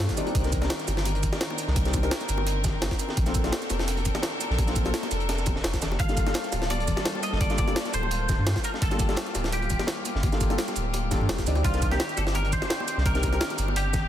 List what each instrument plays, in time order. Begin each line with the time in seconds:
Already playing: felt piano G3 A#3 D4 F4 A4, string section G3 A#3 F4 A4
0.09 kick, snare, closed hi-hat, high bongo, shaker
0.16 felt piano G3 C4 D4 D#4 D5, closed hi-hat, high conga, shaker
0.27 closed hi-hat, high bongo
0.35 sub bass C2, string section D#3 C4 D4 A#4, kick, closed hi-hat
0.44 felt piano G3 C4 D4 D#4 A#4, snare, closed hi-hat, high bongo, shaker
0.53 kick, closed hi-hat, shaker
0.61 felt piano G3 C4 D4 D#4 A#4, snare, closed hi-hat, high bongo
0.70 snare, closed hi-hat
0.79 snare, closed hi-hat, shaker
0.88 sub bass G1, snare, closed hi-hat, high bongo, shaker
0.97 snare
1.05 closed hi-hat, high bongo
1.15 closed hi-hat
1.23 kick, closed hi-hat, high conga, shaker
1.32 snare, high bongo
1.41 snare, closed hi-hat
1.50 high bongo
1.58 closed hi-hat, shaker
1.67 sub bass C2, snare
1.76 sub bass C2, kick, closed hi-hat, high bongo
1.85 felt piano G3 C4 D4 D#4 A#4, snare, closed hi-hat, shaker
1.93 kick, closed hi-hat, high bongo, shaker
2.02 felt piano G3 C4 D4 D#4 A#4, snare, closed hi-hat
2.11 snare, closed hi-hat
2.21 snare, closed hi-hat, high bongo, shaker
2.29 sub bass G1, closed hi-hat, shaker
2.38 high bongo
2.47 closed hi-hat
2.64 kick, snare, closed hi-hat, high bongo, high conga, shaker
2.74 sub bass G1
2.82 snare, closed hi-hat, high bongo
2.91 kick, snare
3.00 closed hi-hat, shaker
3.09 snare, high bongo
3.17 sub bass A#1, string section D4 A4 A#4, kick, closed hi-hat
3.26 felt piano A#3 C4 D4 F4 A4, snare, closed hi-hat, high bongo, shaker
3.34 kick, closed hi-hat, shaker
3.44 felt piano A#3 C4 D4 F4 A4, snare, closed hi-hat
3.52 snare, closed hi-hat, high bongo
3.61 snare, closed hi-hat, shaker
3.70 sub bass F1, snare, closed hi-hat, high bongo, shaker
3.79 snare
3.88 closed hi-hat
3.97 closed hi-hat, high bongo
4.05 kick, closed hi-hat, high conga, shaker
4.15 snare, high bongo
4.23 snare, closed hi-hat
4.41 closed hi-hat, high bongo, shaker
4.50 sub bass A#1, snare
4.58 sub bass A#1, kick, closed hi-hat, high bongo
4.67 felt piano A#3 C4 D4 F4 A4, snare, closed hi-hat, shaker
4.75 kick, closed hi-hat, shaker
4.85 felt piano A#3 C4 D4 F4 A4, snare, closed hi-hat, high bongo
4.94 snare, closed hi-hat
5.03 snare, closed hi-hat, high bongo, shaker
5.11 sub bass F1, closed hi-hat, shaker
5.20 closed hi-hat
5.29 snare, closed hi-hat, high bongo
5.38 snare, shaker
5.46 kick, closed hi-hat, high bongo, high conga, shaker
5.56 sub bass F1, snare
5.64 sub bass F1, snare, closed hi-hat
5.74 kick, snare, closed hi-hat, high bongo, shaker
5.82 sub bass F1, snare, closed hi-hat, high conga, shaker
5.91 snare, high bongo
5.99 sub bass G1, string section G3 A#3 F4 A4, clean electric guitar F5, kick, closed hi-hat
6.08 felt piano G3 A#3 D4 F4 A4, snare, closed hi-hat, high bongo, shaker
6.17 kick, closed hi-hat, shaker
6.26 felt piano G3 A#3 D4 F4 A4, snare, closed hi-hat, high bongo
6.34 snare, closed hi-hat
6.44 snare, closed hi-hat, shaker
6.52 sub bass D1, snare, closed hi-hat, high bongo, shaker
6.62 snare
6.70 clean electric guitar D5, closed hi-hat, high bongo
6.80 closed hi-hat
6.88 kick, closed hi-hat, high conga, shaker
6.96 snare, high bongo
7.05 snare, closed hi-hat
7.15 high bongo
7.23 clean electric guitar D#5, closed hi-hat, shaker
7.32 sub bass G1, snare
7.41 sub bass G1, clean electric guitar D5, kick, closed hi-hat, high bongo
7.50 felt piano G3 A#3 D4 F4 A4, snare, closed hi-hat, shaker
7.58 clean electric guitar D5, kick, closed hi-hat, high bongo, shaker
7.67 felt piano G3 A#3 D4 F4 A4, snare, closed hi-hat
7.76 snare, closed hi-hat
7.85 snare, closed hi-hat, high bongo, shaker
7.93 sub bass D1, clean electric guitar C5, closed hi-hat, shaker
8.03 high bongo
8.11 closed hi-hat
8.29 kick, snare, closed hi-hat, high bongo, high conga, shaker
8.38 sub bass G2
8.47 snare, closed hi-hat, high bongo
8.56 kick, snare
8.64 clean electric guitar A#4, closed hi-hat, shaker
8.74 snare, high bongo
8.82 sub bass G1, string section G4, clean electric guitar A4, kick, closed hi-hat
8.90 felt piano G3 A#3 D4 F4 A4, snare, closed hi-hat, high bongo, shaker
9.00 kick, closed hi-hat, shaker
9.08 felt piano G3 A#3 D4 F4 A4, snare, closed hi-hat
9.16 snare, closed hi-hat, high bongo
9.26 snare, closed hi-hat, shaker
9.35 sub bass D1, snare, closed hi-hat, high bongo, shaker
9.44 snare
9.52 clean electric guitar G4, closed hi-hat
9.62 closed hi-hat, high bongo
9.70 kick, closed hi-hat, high conga, shaker
9.79 snare, high bongo
9.87 snare, closed hi-hat
10.05 closed hi-hat, high bongo, shaker
10.15 sub bass G1, snare
10.23 sub bass G1, kick, closed hi-hat, high bongo
10.32 felt piano G3 A#3 D4 F4 A4, snare, closed hi-hat, shaker
10.41 kick, closed hi-hat, shaker
10.49 felt piano G3 A#3 D4 F4 A4, snare, closed hi-hat, high bongo
10.58 snare, closed hi-hat
10.68 snare, closed hi-hat, high bongo, shaker
10.76 sub bass D1, closed hi-hat, shaker
10.94 closed hi-hat, high bongo
11.11 felt piano G3 A#3 D4 F4 A4, kick, snare, closed hi-hat, high bongo, high conga, shaker
11.21 sub bass G2, high conga
11.29 sub bass F1, snare, closed hi-hat
11.38 kick, snare, closed hi-hat, high bongo, shaker
11.46 sub bass D2, felt piano G3 C4 D4 D#4 D5, closed hi-hat, high conga, shaker
11.55 closed hi-hat, high bongo
11.64 sub bass C2, string section D#3 C4 D4, clean electric guitar F4, kick, closed hi-hat
11.73 felt piano G3 C4 D4 D#4 A#4, snare, closed hi-hat, high bongo, shaker
11.82 kick, closed hi-hat, shaker
11.91 felt piano G3 C4 D4 D#4 A#4, clean electric guitar G4, snare, closed hi-hat, high bongo
12.00 snare, closed hi-hat
12.09 snare, closed hi-hat, shaker
12.17 sub bass G1, clean electric guitar A4, snare, closed hi-hat, high bongo, shaker
12.27 snare
12.35 clean electric guitar A#4, closed hi-hat, high bongo
12.45 closed hi-hat
12.52 clean electric guitar C5, kick, closed hi-hat, high conga, shaker
12.62 snare, high bongo
12.70 snare, closed hi-hat
12.80 high bongo
12.88 closed hi-hat, shaker
12.97 sub bass C2, snare
13.06 sub bass C2, clean electric guitar A#4, kick, closed hi-hat, high bongo
13.15 felt piano G3 C4 D4 D#4 A#4, snare, closed hi-hat, shaker
13.23 kick, closed hi-hat, high bongo, shaker
13.32 felt piano G3 C4 D4 D#4 A#4, snare, closed hi-hat
13.41 snare, closed hi-hat
13.50 snare, closed hi-hat, high bongo, shaker
13.58 sub bass G1, closed hi-hat, shaker
13.68 high bongo
13.76 clean electric guitar G4, closed hi-hat
13.93 kick, snare, closed hi-hat, high bongo, high conga, shaker
14.03 sub bass G1